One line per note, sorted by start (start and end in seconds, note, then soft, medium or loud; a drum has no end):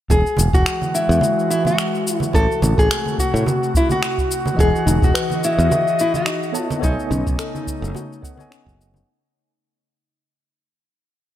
0.10 0.21 E1 medium
0.10 2.32 E3 medium
0.10 2.32 G#3 medium
0.10 2.32 F#4 medium
0.10 0.54 G#4 loud
0.10 kick loud
0.10 low conga medium
0.10 shaker soft
0.26 shaker soft
0.37 0.50 E1 medium
0.37 high conga medium
0.37 shaker medium
0.53 0.63 E1 medium
0.53 0.96 F#4 medium
0.53 kick medium
0.53 shaker soft
0.66 finger snap medium
0.66 shaker soft
0.82 high conga medium
0.82 shaker soft
0.95 1.49 E4 medium
0.95 shaker medium
1.09 1.19 E2 medium
1.09 shaker soft
1.21 high conga medium
1.21 shaker soft
1.39 shaker soft
1.50 1.65 E4 medium
1.50 shaker medium
1.65 2.15 F#4 medium
1.65 high conga medium
1.65 shaker soft
1.78 finger snap medium
1.78 shaker soft
1.95 shaker soft
2.07 shaker medium
2.15 2.31 E4 medium
2.20 high conga medium
2.20 shaker soft
2.33 2.46 A1 medium
2.33 4.56 C3 medium
2.33 4.56 A3 medium
2.33 6.51 F#4 medium
2.33 2.79 A4 loud
2.33 kick loud
2.33 low conga medium
2.33 shaker soft
2.52 shaker soft
2.62 2.74 A1 medium
2.62 high conga medium
2.62 shaker medium
2.78 2.87 A1 medium
2.78 3.19 G#4 loud
2.78 kick medium
2.78 shaker soft
2.91 finger snap loud
2.91 shaker soft
3.06 high conga medium
3.06 shaker soft
3.18 3.77 F#4 loud
3.18 kick medium
3.18 shaker medium
3.34 3.43 A2 medium
3.34 shaker soft
3.46 high conga medium
3.46 shaker soft
3.63 shaker soft
3.75 3.90 E4 medium
3.75 kick loud
3.75 shaker medium
3.89 4.55 F#4 medium
3.89 high conga medium
3.89 shaker soft
4.03 finger snap medium
4.03 shaker soft
4.18 kick medium
4.18 shaker soft
4.31 shaker medium
4.46 high conga medium
4.46 shaker soft
4.55 6.50 E3 medium
4.55 6.52 G#4 medium
4.55 6.51 D#5 medium
4.55 kick loud
4.59 4.70 E1 medium
4.59 5.00 G#4 loud
4.59 6.53 D#5 medium
4.59 6.52 F#5 medium
4.59 low conga medium
4.59 shaker soft
4.76 shaker soft
4.86 4.98 E1 medium
4.86 5.12 D#4 loud
4.86 high conga medium
4.86 shaker medium
5.02 5.11 E1 medium
5.02 5.45 F#4 medium
5.02 kick loud
5.02 shaker soft
5.14 5.41 B4 medium
5.14 finger snap loud
5.14 shaker soft
5.30 high conga medium
5.30 shaker soft
5.44 6.00 E4 medium
5.44 shaker medium
5.59 5.68 E2 medium
5.59 shaker soft
5.70 5.96 F#4 medium
5.70 high conga loud
5.70 shaker soft
5.88 shaker soft
5.99 6.14 E4 medium
5.99 shaker medium
6.14 6.64 F#4 medium
6.14 high conga medium
6.14 shaker soft
6.26 6.52 D#4 medium
6.26 finger snap medium
6.26 shaker soft
6.43 shaker soft
6.52 9.04 C#3 medium
6.52 9.04 A3 medium
6.52 6.78 B3 medium
6.52 9.04 D#4 medium
6.52 6.79 A4 medium
6.52 6.79 C#5 medium
6.52 6.80 D#5 medium
6.52 6.80 A5 medium
6.52 shaker medium
6.64 6.80 E4 medium
6.70 high conga medium
6.70 shaker soft
6.79 8.19 B3 medium
6.79 8.20 A4 medium
6.79 8.20 C#5 medium
6.79 kick loud
6.79 low conga medium
6.83 6.95 B1 medium
6.83 8.76 D#4 medium
6.83 8.21 D#5 medium
6.83 8.21 G#5 medium
6.83 shaker soft
7.00 shaker soft
7.11 7.22 B1 medium
7.11 7.36 C#4 loud
7.11 high conga medium
7.11 shaker medium
7.27 7.36 B1 medium
7.27 kick loud
7.27 shaker soft
7.39 7.66 A4 medium
7.39 finger snap loud
7.39 shaker soft
7.55 high conga medium
7.55 shaker soft
7.67 kick medium
7.67 shaker medium
7.82 7.92 F#1 loud
7.82 shaker soft
7.95 8.21 F#4 medium
7.95 high conga medium
7.95 shaker soft
8.13 shaker soft
8.21 8.35 B3 medium
8.21 8.36 A4 medium
8.21 8.36 C#5 medium
8.21 8.36 D#5 medium
8.21 8.37 F#5 medium
8.21 kick loud
8.21 shaker medium
8.36 9.03 B3 medium
8.36 9.03 A4 medium
8.36 9.04 C#5 medium
8.36 high conga medium
8.40 9.05 D#5 medium
8.40 9.05 G#5 loud
8.40 shaker soft
8.51 8.76 C#4 medium
8.51 finger snap medium
8.51 shaker soft
8.66 9.02 F#1 medium
8.66 kick medium
8.66 shaker soft
8.81 shaker medium
8.94 high conga medium
8.94 shaker soft